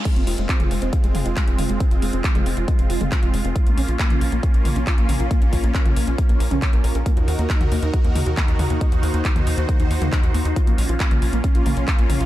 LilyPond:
<<
  \new Staff \with { instrumentName = "Supersaw synth" } { \time 4/4 \key bes \minor \tempo 4 = 137 << { f'1~ | f'1~ | f'1~ | f'1 |
bes'1 | c''1 | f'1 | } \\ { <aes c'>1~ | <aes c'>1 | <bes des'>1~ | <bes des'>1 |
<ees ees' ges'>1~ | <ees ees' ges'>1 | <bes des'>1 | } >> }
  \new Staff \with { instrumentName = "Synth pluck" } { \time 4/4 \key bes \minor aes16 c'16 f'16 aes16 c'16 f'16 aes16 c'16 f'16 aes16 c'16 f'16 aes16 c'16 f'16 aes16 | c'16 f'16 aes16 c'16 f'16 aes16 c'16 f'16 aes16 c'16 f'16 aes16 c'16 f'16 aes16 c'16 | f'16 bes16 des'16 f'16 bes16 des'16 f'16 bes16 des'16 f'16 bes16 des'16 f'16 bes16 des'16 f'16 | bes16 des'16 f'16 bes16 des'16 f'16 bes16 des'16 f'16 bes16 bes'16 des'16 des''16 bes16 bes'16 bes'16 |
bes16 ees'16 ges'16 bes16 ees'16 ges'16 bes16 ees'16 ges'16 bes16 ees'16 ges'16 bes16 ees'16 ges'16 bes16 | ees'16 ges'16 bes16 ees'16 ges'16 bes16 ees'16 ges'16 bes16 ees'16 ges'16 bes16 ees'16 ges'16 bes16 ees'16 | f'16 bes16 des'16 f'16 bes16 des'16 f'16 bes16 des'16 f'16 bes16 des'16 f'16 bes16 des'16 f'16 | }
  \new Staff \with { instrumentName = "Analog synth bass" } { \clef bass \time 4/4 \key bes \minor r16 f,,16 f,,16 f,,16 r16 f,,16 f,,16 f,,16 r16 f,,16 f,,16 f,,16 r16 f,,16 f,,16 f,,16 | r16 f,,16 f,,16 f,,16 r16 f,,16 f,,16 f,,16 r16 f,,16 f,,16 f,,16 r16 f,,16 f,,16 f,,16 | r16 bes,,16 bes,,16 bes,,16 r16 bes,,16 bes,,16 bes,,16 r16 bes,,16 bes,,16 bes,,16 r16 bes,,16 bes,,16 bes,,16 | r16 bes,,16 bes,,16 bes,,16 r16 bes,,16 bes,,16 bes,,16 r16 bes,,16 bes,,16 bes,,16 r16 bes,,16 bes,,16 bes,,16 |
r16 ees,16 ees,16 ees,16 r16 ees,16 ees,16 ees,16 r16 ees,16 ees,16 ees,16 r16 ees,16 ees,16 ees,16 | r16 ees,16 ees,16 ees,16 r16 ees,16 ees,16 ees,16 r16 ees,16 ees,16 ees,16 r16 ees,16 ees,16 ees,16 | r16 bes,,16 bes,,16 bes,,16 r16 bes,,16 bes,,16 bes,,16 r16 bes,,16 bes,,16 bes,,16 r16 bes,,16 bes,,16 bes,,16 | }
  \new DrumStaff \with { instrumentName = "Drums" } \drummode { \time 4/4 <cymc hh bd>16 hh16 hho16 hh16 <hc hh bd>16 <hh toml>16 hho16 hh16 <hh bd>16 hh16 <hho toml>16 hh16 <hc hh bd>16 hh16 <hho toml>16 hh16 | <hh bd>16 hh16 hho16 hh16 <hc hh bd>16 <hh toml>16 hho16 hh16 <hh bd>16 hh16 hho16 <hh toml>16 <hc hh bd>16 hh16 hho16 hh16 | <hh bd>16 hh16 hho16 hh16 <hc hh bd>16 <hh toml>16 hho16 hh16 <hh bd>16 hh16 <hho toml>16 hh16 <hc hh bd>16 hh16 <hho toml>16 hh16 | <hh bd>16 hh16 <hho bd>16 hh16 <hc hh bd>16 <hh toml>16 hho16 hh16 <hh bd>16 hh16 hho16 <hh toml>16 <hc hh bd>16 hh16 hho16 hh16 |
<hh bd>16 hh16 hho16 hh16 <hc hh bd>16 <hh toml>16 hho16 hh16 <hh bd>16 hh16 <hho toml>16 hh16 <hc hh bd>16 hh16 <hho toml>16 hh16 | <hh bd>16 hh16 hho16 hh16 <hc hh bd>16 <hh toml>16 hho16 hh16 <hh bd>16 hh16 hho16 <hh toml>16 <hc hh bd>16 hh16 hho16 hh16 | <hh bd>16 hh16 hho16 hh16 <hc hh bd>16 <hh toml>16 hho16 hh16 <hh bd>16 hh16 <hho toml>16 hh16 <hc hh bd>16 hh16 <hho toml>16 hh16 | }
>>